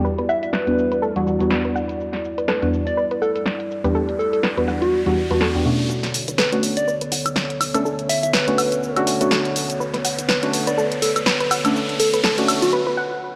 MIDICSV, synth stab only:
0, 0, Header, 1, 2, 480
1, 0, Start_track
1, 0, Key_signature, 2, "minor"
1, 0, Tempo, 487805
1, 45, Time_signature, 4, 2, 24, 8
1, 13142, End_track
2, 0, Start_track
2, 0, Title_t, "Synth stab"
2, 0, Program_c, 0, 62
2, 658, Note_on_c, 0, 40, 75
2, 659, Note_on_c, 0, 55, 71
2, 660, Note_on_c, 0, 59, 70
2, 661, Note_on_c, 0, 62, 73
2, 662, Note_on_c, 0, 66, 86
2, 1107, Note_off_c, 0, 40, 0
2, 1107, Note_off_c, 0, 55, 0
2, 1108, Note_off_c, 0, 59, 0
2, 1108, Note_off_c, 0, 62, 0
2, 1109, Note_off_c, 0, 66, 0
2, 1138, Note_on_c, 0, 40, 89
2, 1139, Note_on_c, 0, 55, 85
2, 1140, Note_on_c, 0, 59, 85
2, 1142, Note_on_c, 0, 62, 89
2, 1143, Note_on_c, 0, 66, 108
2, 1219, Note_off_c, 0, 40, 0
2, 1219, Note_off_c, 0, 55, 0
2, 1220, Note_off_c, 0, 59, 0
2, 1220, Note_off_c, 0, 62, 0
2, 1221, Note_off_c, 0, 66, 0
2, 1243, Note_on_c, 0, 40, 83
2, 1243, Note_on_c, 0, 55, 75
2, 1245, Note_on_c, 0, 59, 71
2, 1246, Note_on_c, 0, 62, 73
2, 1247, Note_on_c, 0, 66, 91
2, 1347, Note_off_c, 0, 40, 0
2, 1348, Note_off_c, 0, 55, 0
2, 1348, Note_off_c, 0, 59, 0
2, 1349, Note_off_c, 0, 62, 0
2, 1349, Note_off_c, 0, 66, 0
2, 1377, Note_on_c, 0, 40, 92
2, 1379, Note_on_c, 0, 55, 90
2, 1381, Note_on_c, 0, 59, 92
2, 1383, Note_on_c, 0, 62, 86
2, 1385, Note_on_c, 0, 66, 111
2, 2546, Note_off_c, 0, 40, 0
2, 2547, Note_off_c, 0, 55, 0
2, 2549, Note_off_c, 0, 59, 0
2, 2550, Note_off_c, 0, 62, 0
2, 2551, Note_off_c, 0, 66, 0
2, 2578, Note_on_c, 0, 40, 86
2, 2579, Note_on_c, 0, 55, 80
2, 2580, Note_on_c, 0, 59, 80
2, 2581, Note_on_c, 0, 62, 78
2, 2583, Note_on_c, 0, 66, 99
2, 2817, Note_off_c, 0, 40, 0
2, 2817, Note_off_c, 0, 55, 0
2, 2818, Note_off_c, 0, 59, 0
2, 2818, Note_off_c, 0, 62, 0
2, 2819, Note_off_c, 0, 66, 0
2, 3779, Note_on_c, 0, 40, 103
2, 3780, Note_on_c, 0, 55, 92
2, 3781, Note_on_c, 0, 59, 90
2, 3782, Note_on_c, 0, 62, 92
2, 3783, Note_on_c, 0, 67, 103
2, 3916, Note_off_c, 0, 40, 0
2, 3916, Note_off_c, 0, 55, 0
2, 3917, Note_off_c, 0, 59, 0
2, 3917, Note_off_c, 0, 62, 0
2, 3918, Note_off_c, 0, 67, 0
2, 4498, Note_on_c, 0, 40, 81
2, 4499, Note_on_c, 0, 55, 72
2, 4500, Note_on_c, 0, 59, 71
2, 4501, Note_on_c, 0, 62, 71
2, 4502, Note_on_c, 0, 66, 88
2, 4947, Note_off_c, 0, 40, 0
2, 4948, Note_off_c, 0, 55, 0
2, 4948, Note_off_c, 0, 59, 0
2, 4948, Note_off_c, 0, 62, 0
2, 4949, Note_off_c, 0, 66, 0
2, 4978, Note_on_c, 0, 40, 98
2, 4979, Note_on_c, 0, 55, 91
2, 4980, Note_on_c, 0, 59, 88
2, 4980, Note_on_c, 0, 62, 86
2, 4982, Note_on_c, 0, 66, 103
2, 5058, Note_off_c, 0, 40, 0
2, 5059, Note_off_c, 0, 55, 0
2, 5059, Note_off_c, 0, 59, 0
2, 5060, Note_off_c, 0, 62, 0
2, 5061, Note_off_c, 0, 66, 0
2, 5217, Note_on_c, 0, 40, 82
2, 5218, Note_on_c, 0, 55, 75
2, 5219, Note_on_c, 0, 59, 79
2, 5221, Note_on_c, 0, 62, 76
2, 5221, Note_on_c, 0, 66, 90
2, 5426, Note_off_c, 0, 40, 0
2, 5427, Note_off_c, 0, 55, 0
2, 5428, Note_off_c, 0, 59, 0
2, 5428, Note_off_c, 0, 62, 0
2, 5429, Note_off_c, 0, 66, 0
2, 5457, Note_on_c, 0, 40, 77
2, 5458, Note_on_c, 0, 55, 70
2, 5459, Note_on_c, 0, 59, 70
2, 5460, Note_on_c, 0, 62, 70
2, 5462, Note_on_c, 0, 67, 85
2, 5538, Note_off_c, 0, 40, 0
2, 5539, Note_off_c, 0, 55, 0
2, 5539, Note_off_c, 0, 59, 0
2, 5540, Note_off_c, 0, 62, 0
2, 5540, Note_off_c, 0, 67, 0
2, 5561, Note_on_c, 0, 47, 80
2, 5562, Note_on_c, 0, 57, 76
2, 5563, Note_on_c, 0, 61, 72
2, 5564, Note_on_c, 0, 62, 74
2, 5565, Note_on_c, 0, 66, 87
2, 6043, Note_off_c, 0, 47, 0
2, 6044, Note_off_c, 0, 57, 0
2, 6044, Note_off_c, 0, 61, 0
2, 6045, Note_off_c, 0, 62, 0
2, 6045, Note_off_c, 0, 66, 0
2, 6418, Note_on_c, 0, 57, 92
2, 6419, Note_on_c, 0, 61, 78
2, 6420, Note_on_c, 0, 62, 77
2, 6422, Note_on_c, 0, 66, 98
2, 6656, Note_off_c, 0, 57, 0
2, 6657, Note_off_c, 0, 61, 0
2, 6657, Note_off_c, 0, 62, 0
2, 6658, Note_off_c, 0, 66, 0
2, 7618, Note_on_c, 0, 57, 97
2, 7619, Note_on_c, 0, 61, 90
2, 7620, Note_on_c, 0, 62, 94
2, 7622, Note_on_c, 0, 69, 106
2, 7755, Note_off_c, 0, 57, 0
2, 7756, Note_off_c, 0, 61, 0
2, 7757, Note_off_c, 0, 62, 0
2, 7757, Note_off_c, 0, 69, 0
2, 8338, Note_on_c, 0, 57, 81
2, 8340, Note_on_c, 0, 61, 72
2, 8341, Note_on_c, 0, 62, 72
2, 8342, Note_on_c, 0, 66, 87
2, 8787, Note_off_c, 0, 57, 0
2, 8788, Note_off_c, 0, 61, 0
2, 8788, Note_off_c, 0, 62, 0
2, 8789, Note_off_c, 0, 66, 0
2, 8819, Note_on_c, 0, 57, 95
2, 8820, Note_on_c, 0, 61, 83
2, 8822, Note_on_c, 0, 62, 85
2, 8823, Note_on_c, 0, 66, 104
2, 8899, Note_off_c, 0, 57, 0
2, 8900, Note_off_c, 0, 61, 0
2, 8900, Note_off_c, 0, 62, 0
2, 8901, Note_off_c, 0, 66, 0
2, 8922, Note_on_c, 0, 57, 80
2, 8924, Note_on_c, 0, 61, 77
2, 8925, Note_on_c, 0, 62, 74
2, 8927, Note_on_c, 0, 66, 88
2, 9027, Note_off_c, 0, 57, 0
2, 9028, Note_off_c, 0, 61, 0
2, 9028, Note_off_c, 0, 62, 0
2, 9029, Note_off_c, 0, 66, 0
2, 9056, Note_on_c, 0, 57, 96
2, 9059, Note_on_c, 0, 61, 90
2, 9062, Note_on_c, 0, 62, 92
2, 9064, Note_on_c, 0, 66, 106
2, 10226, Note_off_c, 0, 57, 0
2, 10227, Note_off_c, 0, 61, 0
2, 10229, Note_off_c, 0, 62, 0
2, 10230, Note_off_c, 0, 66, 0
2, 10258, Note_on_c, 0, 57, 87
2, 10260, Note_on_c, 0, 61, 81
2, 10261, Note_on_c, 0, 62, 81
2, 10263, Note_on_c, 0, 66, 94
2, 10496, Note_off_c, 0, 57, 0
2, 10497, Note_off_c, 0, 61, 0
2, 10498, Note_off_c, 0, 62, 0
2, 10499, Note_off_c, 0, 66, 0
2, 11459, Note_on_c, 0, 57, 101
2, 11460, Note_on_c, 0, 61, 94
2, 11462, Note_on_c, 0, 62, 91
2, 11463, Note_on_c, 0, 69, 113
2, 11596, Note_off_c, 0, 57, 0
2, 11597, Note_off_c, 0, 61, 0
2, 11597, Note_off_c, 0, 62, 0
2, 11598, Note_off_c, 0, 69, 0
2, 12179, Note_on_c, 0, 57, 81
2, 12180, Note_on_c, 0, 61, 73
2, 12182, Note_on_c, 0, 62, 73
2, 12184, Note_on_c, 0, 66, 91
2, 12524, Note_off_c, 0, 57, 0
2, 12525, Note_off_c, 0, 61, 0
2, 12525, Note_off_c, 0, 62, 0
2, 12526, Note_off_c, 0, 66, 0
2, 13142, End_track
0, 0, End_of_file